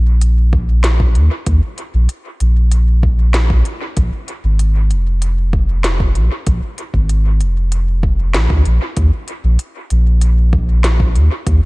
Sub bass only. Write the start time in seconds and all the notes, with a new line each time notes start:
Already playing: A#1
1.16 D#2
1.47 D#2
1.94 A#1
2.41 A#1
3.97 A#1
4.44 G#1
4.91 F1
6.16 A#1
6.47 A#1
6.94 G#1
7.41 F1
8.35 A#1
8.50 D2
8.66 A#1
8.97 D#2
9.44 A#1
9.91 A#1
11.16 D#2
11.47 D#2